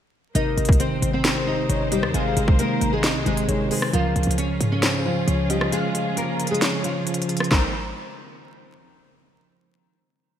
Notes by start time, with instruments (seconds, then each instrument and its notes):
0.35 808-style bass G#1, tine electric piano C3, string section G#3 D#4 A#4 C5, nylon-string guitar D#4 D#5, soft synth lead A#4, closed hi-hat
0.57 808-style bass G#1, tine electric piano C3, closed hi-hat
0.65 kick, closed hi-hat
0.72 closed hi-hat
0.80 tine electric piano D#3, nylon-string guitar C4 C5, closed hi-hat
1.02 808-style bass G#1, closed hi-hat
1.13 nylon-string guitar C4 C5
1.24 tine electric piano C3, soft synth lead C5, snare, closed hi-hat
1.47 tine electric piano C3, nylon-string guitar D#4 D#5
1.69 808-style bass G#1, tine electric piano D#3, soft synth lead C#5, closed hi-hat
1.92 tine electric piano D#3, nylon-string guitar G3 G4, soft synth lead D#5, closed hi-hat
2.03 808-style bass D#2, cross-stick
2.14 808-style bass G#1, tine electric piano C3, nylon-string guitar G#3 G#4, soft synth lead F5, closed hi-hat
2.37 808-style bass G#1, tine electric piano C3, closed hi-hat
2.48 kick
2.59 tine electric piano D#3, nylon-string guitar A#3 A#4, closed hi-hat
2.81 808-style bass G#1, closed hi-hat
2.93 nylon-string guitar G#3 G#4
3.04 tine electric piano C3, soft synth lead D#5, snare, closed hi-hat
3.15 808-style bass C2
3.26 808-style bass G#1, tine electric piano C3, nylon-string guitar G#3 G#4, closed hi-hat
3.37 closed hi-hat
3.48 808-style bass G#1, tine electric piano D#3, soft synth lead C#5, closed hi-hat
3.71 tine electric piano D#3, nylon-string guitar G#3 G#4, soft synth lead C5, open hi-hat
3.82 cross-stick
3.93 808-style bass C#2, tine electric piano C#3, string section C#3 C#4 F4 G#4, nylon-string guitar F3 F4, soft synth lead A#4, closed hi-hat
4.16 808-style bass C#2, tine electric piano C#3, closed hi-hat
4.23 808-style bass C#2, closed hi-hat
4.31 closed hi-hat
4.38 tine electric piano F3, nylon-string guitar C#4 C#5, closed hi-hat
4.60 808-style bass G#2, closed hi-hat
4.72 nylon-string guitar C#4 C#5
4.83 tine electric piano C#3, soft synth lead C5, snare, closed hi-hat
5.05 tine electric piano C#3, nylon-string guitar F3 F4
5.28 808-style bass C#2, tine electric piano F3, soft synth lead C#5, closed hi-hat
5.50 tine electric piano F3, nylon-string guitar G3 G4, soft synth lead D#5, closed hi-hat
5.61 cross-stick
5.72 tine electric piano C#3, nylon-string guitar G#3 G#4, soft synth lead F5, closed hi-hat
5.95 tine electric piano C#3, closed hi-hat
6.17 tine electric piano F3, nylon-string guitar A#3 A#4, closed hi-hat
6.40 closed hi-hat
6.47 nylon-string guitar G#4, closed hi-hat
6.51 nylon-string guitar G#3, closed hi-hat
6.62 tine electric piano C#3, soft synth lead C#5, snare, closed hi-hat
6.84 tine electric piano C#3, nylon-string guitar F3 F4, closed hi-hat
7.07 tine electric piano F3, closed hi-hat
7.14 closed hi-hat
7.22 closed hi-hat
7.29 tine electric piano F3, closed hi-hat, open hi-hat
7.37 cross-stick, closed hi-hat
7.44 closed hi-hat
7.51 808-style bass G#1, nylon-string guitar D#3, tine electric piano D#3 G#3 A#3 C4, string section G#3 D#4 A#4 C5, soft synth lead C5, kick, snare, clap